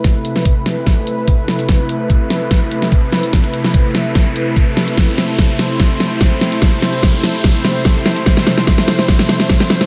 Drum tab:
HH |x-x-x-x-x-x-x--x|x-x-x-x-x-x-x--x|xxx-x-x-x-x-x--x|x-x-x-o-x-x-x--x|
SD |o--o--o-o-----o-|o-----o-o--o--o-|o--o--o-o-----o-|o-o-o-o-o-o-o-o-|
BD |o---o---o---o---|o---o---o---o---|o---o---o---o---|o---o---o---o---|

HH |x-x-x-o-x-x-x--x|x-x-x-o-x-x-x--x|
SD |o-o-o-o-o-o-o-o-|oooooooooooooooo|
BD |o---o---o---o---|o---o---o---o---|